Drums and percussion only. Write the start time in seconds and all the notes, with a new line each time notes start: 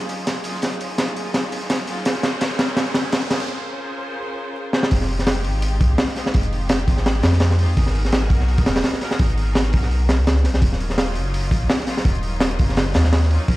0.01 closed hi-hat
0.09 closed hi-hat, open hi-hat
0.27 snare, closed hi-hat, open hi-hat
0.44 closed hi-hat, open hi-hat
0.55 snare
0.62 snare, closed hi-hat, open hi-hat
0.73 closed hi-hat
0.81 closed hi-hat, open hi-hat
0.98 snare, closed hi-hat, open hi-hat
1.08 closed hi-hat
1.16 closed hi-hat, open hi-hat
1.34 snare, closed hi-hat, open hi-hat
1.52 closed hi-hat, open hi-hat
1.62 snare
1.70 snare, closed hi-hat, open hi-hat
1.80 snare
1.87 snare, closed hi-hat, open hi-hat
2.05 snare, closed hi-hat, open hi-hat
2.15 snare
2.23 snare, closed hi-hat, open hi-hat
2.41 snare, closed hi-hat, open hi-hat
2.51 snare
2.59 snare, closed hi-hat, open hi-hat
2.69 closed hi-hat
2.77 snare, closed hi-hat, open hi-hat
2.87 closed hi-hat
2.94 snare, closed hi-hat, open hi-hat
3.12 snare, closed hi-hat, open hi-hat
3.30 snare, closed hi-hat, open hi-hat
3.40 snare, open hi-hat
4.73 snare
4.83 snare
4.91 kick, open hi-hat
5.01 snare
5.08 open hi-hat
5.19 snare
5.27 snare, open hi-hat
5.44 open hi-hat
5.62 open hi-hat
5.81 kick, open hi-hat
5.98 snare, open hi-hat
6.08 snare
6.16 snare, open hi-hat
6.26 snare
6.34 kick, open hi-hat
6.43 closed hi-hat
6.53 open hi-hat
6.69 snare, open hi-hat
6.79 closed hi-hat
6.88 kick, open hi-hat
6.97 snare
7.06 snare, open hi-hat
7.23 snare, open hi-hat
7.33 snare
7.40 snare, open hi-hat
7.51 snare
7.59 open hi-hat
7.77 kick, open hi-hat
7.87 snare
7.95 open hi-hat
8.05 snare
8.12 snare, open hi-hat
8.30 kick, open hi-hat
8.40 snare
8.48 open hi-hat
8.58 kick, open hi-hat
8.66 snare, open hi-hat
8.76 snare, open hi-hat
8.84 snare, open hi-hat
8.93 snare
9.01 snare, open hi-hat
9.11 snare
9.19 kick, open hi-hat
9.30 closed hi-hat
9.38 open hi-hat
9.55 snare, open hi-hat
9.65 closed hi-hat
9.73 kick, open hi-hat
9.83 snare
9.91 open hi-hat
10.09 snare, open hi-hat
10.27 snare, open hi-hat
10.36 snare
10.44 snare, open hi-hat
10.54 snare
10.62 kick, open hi-hat
10.73 snare
10.80 open hi-hat
10.90 snare
10.98 snare, open hi-hat
11.15 open hi-hat
11.34 open hi-hat
11.51 kick, open hi-hat
11.70 snare, open hi-hat
11.80 snare
11.87 snare, open hi-hat
11.97 snare
12.05 kick, open hi-hat
12.15 closed hi-hat
12.23 open hi-hat
12.40 snare, open hi-hat
12.51 closed hi-hat
12.59 kick, open hi-hat
12.69 snare
12.77 snare, open hi-hat
12.94 snare, open hi-hat
13.05 snare
13.13 snare, open hi-hat
13.23 snare
13.31 open hi-hat
13.48 kick, open hi-hat